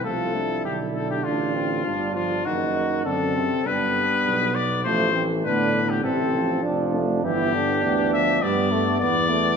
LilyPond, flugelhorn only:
\new Staff \with { instrumentName = "Flugelhorn" } { \time 4/4 \key d \dorian \tempo 4 = 100 f'8 e'4. d'8 c'8 d'4 | dis'4 d'8 c'8 b2 | a8 c'8 d'8 r8 c'4 d'4 | e'8 d'4. b8 a8 b4 | }